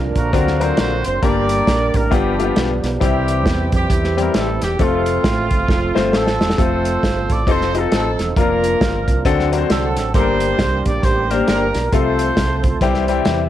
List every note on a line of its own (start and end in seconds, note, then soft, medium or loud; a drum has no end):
0.00 0.12 C2 loud
0.00 0.12 A#2 medium
0.00 2.09 D3 medium
0.00 0.32 F3 medium
0.00 0.32 A#3 medium
0.00 2.09 A#3 medium
0.00 0.29 D4 medium
0.00 0.32 D4 medium
0.00 0.32 A#4 medium
0.16 0.31 A#1 medium
0.16 1.01 F4 medium
0.16 1.01 F#4 medium
0.16 0.57 A#4 medium
0.16 kick medium
0.16 closed hi-hat medium
0.32 0.71 D2 loud
0.32 1.01 D3 medium
0.32 0.40 F3 soft
0.32 1.21 F#3 medium
0.32 1.21 C4 medium
0.32 0.55 C4 medium
0.32 1.21 C4 medium
0.32 0.55 D4 medium
0.32 1.21 D4 medium
0.32 0.55 F#4 medium
0.32 1.21 A#4 medium
0.32 0.55 A#4 medium
0.32 kick loud
0.32 closed hi-hat medium
0.39 1.24 F#3 medium
0.47 snare soft
0.60 0.92 F#3 medium
0.60 0.91 C4 medium
0.60 0.92 D4 medium
0.60 0.92 A#4 medium
0.60 0.78 C5 medium
0.60 closed hi-hat medium
0.77 1.01 A#1 medium
0.77 1.03 C5 medium
0.77 snare medium
0.77 closed hi-hat medium
1.04 1.21 F#1 medium
1.04 1.22 C5 medium
1.04 closed hi-hat medium
1.22 1.61 G1 loud
1.22 1.90 G2 medium
1.22 4.76 G3 medium
1.22 2.10 G3 medium
1.22 1.67 A#3 medium
1.22 2.11 A#3 medium
1.22 2.99 D4 medium
1.22 1.67 D4 medium
1.22 2.11 D4 medium
1.22 1.67 G4 medium
1.22 2.09 G4 medium
1.22 1.67 A#4 medium
1.22 2.11 A#4 medium
1.22 1.95 A#4 medium
1.22 1.95 D5 loud
1.22 kick loud
1.22 closed hi-hat medium
1.49 closed hi-hat medium
1.67 1.91 A#1 medium
1.67 kick medium
1.67 snare loud
1.67 closed hi-hat medium
1.94 2.09 A1 medium
1.94 2.13 A#4 medium
1.94 kick medium
1.94 closed hi-hat medium
2.11 2.50 G1 medium
2.11 2.79 G2 medium
2.11 3.00 F3 medium
2.11 2.33 B3 medium
2.11 3.00 B3 medium
2.11 2.99 B3 medium
2.11 2.98 B3 medium
2.11 2.33 D4 medium
2.11 2.99 D4 medium
2.11 2.98 D4 medium
2.11 2.33 F4 medium
2.11 2.19 F4 soft
2.11 2.33 G4 medium
2.11 2.58 G4 medium
2.11 kick loud
2.11 closed hi-hat medium
2.17 3.00 G4 medium
2.38 2.43 A3 medium
2.38 2.70 D4 medium
2.38 2.70 F4 medium
2.38 2.70 G4 medium
2.38 closed hi-hat medium
2.44 2.73 B3 medium
2.56 2.80 B1 medium
2.56 snare medium
2.56 closed hi-hat medium
2.83 2.99 B1 medium
2.83 snare soft
2.83 closed hi-hat medium
3.00 3.46 C2 loud
3.00 3.69 C3 medium
3.00 3.08 D#3 soft
3.00 4.77 E3 medium
3.00 3.46 G3 medium
3.00 4.76 G3 medium
3.00 4.77 C4 medium
3.00 3.46 C4 medium
3.00 4.76 C4 medium
3.00 3.73 C4 medium
3.00 4.77 E4 medium
3.00 3.46 E4 medium
3.00 3.74 E4 medium
3.00 3.46 G4 medium
3.00 4.76 G4 medium
3.00 kick loud
3.00 closed hi-hat medium
3.04 4.79 E3 medium
3.04 3.70 G4 medium
3.28 closed hi-hat medium
3.46 3.69 E2 medium
3.46 kick medium
3.46 snare loud
3.46 closed hi-hat medium
3.72 3.88 F2 medium
3.72 4.59 C4 medium
3.72 4.59 E4 medium
3.72 4.16 G4 medium
3.72 kick medium
3.72 closed hi-hat medium
3.90 4.28 E2 loud
3.90 kick loud
3.90 closed hi-hat medium
4.04 snare soft
4.17 4.49 G3 medium
4.17 4.49 C4 medium
4.17 4.49 E4 medium
4.17 4.49 G4 medium
4.17 4.35 A#4 medium
4.17 closed hi-hat medium
4.34 4.58 A1 medium
4.34 4.63 A4 medium
4.34 snare medium
4.34 closed hi-hat medium
4.62 4.77 E1 medium
4.62 4.80 G4 medium
4.62 snare soft
4.62 closed hi-hat medium
4.78 5.18 F1 loud
4.78 9.21 F3 medium
4.78 7.43 F3 medium
4.78 8.32 A3 medium
4.78 7.43 A3 medium
4.78 5.25 A3 medium
4.78 6.10 A3 medium
4.78 7.44 C4 medium
4.78 7.43 C4 medium
4.78 5.25 C4 medium
4.78 6.10 C4 medium
4.78 7.44 F4 medium
4.78 5.25 F4 medium
4.78 4.85 G4 medium
4.78 5.25 A4 medium
4.78 kick loud
4.78 closed hi-hat medium
4.83 6.13 F4 medium
4.83 7.45 A4 medium
5.06 closed hi-hat medium
5.24 5.47 A1 medium
5.24 kick medium
5.24 snare loud
5.24 closed hi-hat medium
5.51 5.66 G1 medium
5.51 kick medium
5.51 closed hi-hat medium
5.69 5.92 F1 medium
5.69 kick loud
5.69 snare medium
5.95 6.11 G1 medium
5.95 6.27 A3 medium
5.95 6.27 C4 medium
5.95 6.27 F4 medium
5.95 6.27 C5 medium
5.95 snare medium
6.13 6.37 A1 medium
6.13 6.99 C4 medium
6.13 6.57 F4 medium
6.13 6.57 A4 medium
6.13 snare medium
6.27 snare medium
6.40 6.55 E1 medium
6.40 snare medium
6.50 snare medium
6.58 6.96 F1 medium
6.58 7.03 A3 medium
6.58 7.03 C4 medium
6.58 7.43 F4 medium
6.58 7.03 F4 medium
6.58 7.43 A4 medium
6.58 7.03 A4 medium
6.58 7.31 C5 loud
6.58 kick loud
6.58 closed hi-hat medium
6.85 closed hi-hat medium
7.03 7.26 G1 medium
7.03 kick medium
7.03 snare medium
7.03 closed hi-hat medium
7.30 7.45 A1 medium
7.30 7.48 D5 medium
7.30 kick medium
7.30 closed hi-hat medium
7.47 7.85 F1 medium
7.47 8.35 F3 medium
7.47 8.35 C4 medium
7.47 7.69 C4 medium
7.47 8.35 C4 medium
7.47 8.34 D#4 medium
7.47 7.69 D#4 medium
7.47 8.36 D#4 medium
7.47 7.92 D#4 medium
7.47 7.69 F4 medium
7.47 7.54 G#4 medium
7.47 7.69 A4 medium
7.47 7.77 A4 medium
7.47 7.76 C5 loud
7.47 kick loud
7.47 closed hi-hat medium
7.53 8.37 A4 medium
7.61 snare soft
7.74 8.05 C4 medium
7.74 8.06 D#4 medium
7.74 8.06 F4 medium
7.74 7.79 G#4 medium
7.74 7.93 A4 medium
7.74 closed hi-hat medium
7.80 8.08 A4 medium
7.92 8.15 A1 medium
7.92 8.27 C4 medium
7.92 8.27 D#4 medium
7.92 8.27 A4 medium
7.92 snare medium
7.92 closed hi-hat medium
8.19 8.34 E1 medium
8.19 snare soft
8.19 closed hi-hat medium
8.36 8.74 F1 loud
8.36 9.24 F3 medium
8.36 9.24 A#3 medium
8.36 8.81 A#3 medium
8.36 9.24 A#3 medium
8.36 8.81 D4 medium
8.36 11.89 D4 medium
8.36 9.24 D4 medium
8.36 9.23 D4 medium
8.36 9.24 F4 medium
8.36 8.81 F4 medium
8.36 9.23 F4 medium
8.36 8.81 A#4 medium
8.36 9.24 A#4 medium
8.36 9.23 A#4 medium
8.36 kick loud
8.36 closed hi-hat medium
8.64 closed hi-hat medium
8.81 9.04 G1 medium
8.81 kick medium
8.81 snare loud
8.81 closed hi-hat medium
9.08 9.23 C2 medium
9.08 kick medium
9.08 closed hi-hat medium
9.25 9.63 D2 medium
9.25 9.93 D3 medium
9.25 10.13 F#3 medium
9.25 10.14 A3 medium
9.25 10.12 C4 medium
9.25 9.47 C4 medium
9.25 10.14 C4 medium
9.25 10.13 D4 medium
9.25 9.47 D4 medium
9.25 10.14 F#4 medium
9.25 9.47 F#4 medium
9.25 10.12 A4 medium
9.25 9.47 A4 loud
9.25 kick loud
9.25 closed hi-hat medium
9.39 snare soft
9.52 9.83 C4 medium
9.52 9.84 D4 medium
9.52 9.84 F#4 medium
9.52 9.57 A#4 medium
9.52 closed hi-hat medium
9.58 9.86 C5 medium
9.70 9.98 C2 medium
9.70 10.12 C4 medium
9.70 10.12 F#4 medium
9.70 10.12 A4 medium
9.70 snare medium
9.70 closed hi-hat medium
9.97 10.12 A1 medium
9.97 snare soft
9.97 closed hi-hat medium
10.14 10.52 G1 loud
10.14 10.82 G2 medium
10.14 11.89 G3 medium
10.14 11.91 G3 medium
10.14 10.59 A#3 medium
10.14 11.91 A#3 medium
10.14 11.89 A#3 medium
10.14 11.89 D4 medium
10.14 10.59 D4 medium
10.14 11.91 G4 medium
10.14 10.60 G4 medium
10.14 11.00 G4 medium
10.14 10.21 A4 medium
10.14 11.89 A#4 medium
10.14 10.82 C5 medium
10.14 kick loud
10.14 closed hi-hat medium
10.21 10.62 A#4 medium
10.40 closed hi-hat medium
10.59 10.82 C2 medium
10.59 kick medium
10.59 snare loud
10.59 closed hi-hat medium
10.86 11.01 A#1 medium
10.86 11.04 D5 medium
10.86 kick medium
10.86 closed hi-hat medium
11.03 11.41 A1 medium
11.03 11.47 G4 medium
11.03 11.30 C5 medium
11.03 kick loud
11.03 closed hi-hat medium
11.30 11.62 A#3 medium
11.30 11.62 D4 medium
11.30 11.62 G4 medium
11.30 11.47 A#4 medium
11.30 11.62 C5 medium
11.30 closed hi-hat medium
11.48 11.71 G1 medium
11.48 11.89 D4 medium
11.48 11.89 G4 medium
11.48 11.90 A#4 medium
11.48 snare medium
11.48 closed hi-hat medium
11.74 11.90 B1 medium
11.74 snare soft
11.74 closed hi-hat medium
11.92 12.30 C2 loud
11.92 12.60 C3 medium
11.92 12.80 F3 medium
11.92 12.80 A3 medium
11.92 12.37 A3 medium
11.92 12.80 A3 medium
11.92 13.49 C4 medium
11.92 12.37 C4 medium
11.92 12.80 C4 medium
11.92 12.80 F4 medium
11.92 12.37 F4 medium
11.92 12.78 F4 medium
11.92 12.78 A4 medium
11.92 12.80 A4 medium
11.92 12.38 A4 medium
11.92 12.82 C5 medium
11.92 kick loud
11.92 closed hi-hat medium
12.19 closed hi-hat medium
12.37 12.75 C2 medium
12.37 kick medium
12.37 snare loud
12.37 closed hi-hat medium
12.64 kick medium
12.64 closed hi-hat medium
12.81 13.19 C2 loud
12.81 13.49 C3 medium
12.81 12.89 D3 medium
12.81 13.49 E3 medium
12.81 13.03 G3 medium
12.81 13.49 G3 medium
12.81 13.03 C4 medium
12.81 13.49 C4 medium
12.81 13.03 E4 medium
12.81 13.49 E4 medium
12.81 13.03 G4 loud
12.81 13.49 G4 medium
12.81 kick loud
12.81 closed hi-hat medium
12.88 13.49 E3 medium
12.94 snare soft
13.08 13.39 G3 medium
13.08 13.40 C4 medium
13.08 13.40 E4 medium
13.08 13.40 G4 medium
13.08 13.25 D5 medium
13.08 13.25 G5 medium
13.08 closed hi-hat medium
13.25 13.49 E2 medium
13.25 13.49 E5 medium
13.25 snare loud
13.25 closed hi-hat medium